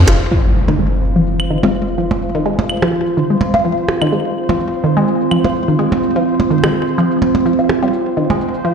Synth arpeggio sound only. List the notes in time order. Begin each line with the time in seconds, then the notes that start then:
0.08 F4
0.31 F3
0.68 D#3
0.79 G#3
1.16 F3
1.51 D#3
1.63 G#3
1.98 F3
2.35 D#3
2.46 G#3
2.83 F3
3.17 D#3
3.30 G#3
3.65 F3
4.02 D#3
4.12 G#3
4.49 F3
4.84 D#3
4.97 G#3
5.31 F3
5.68 D#3
5.79 G#3
6.16 F3
6.50 D#3
6.64 G#3
6.98 F3
7.46 F3
7.83 G3
8.17 D#3
8.30 G#3
8.65 F3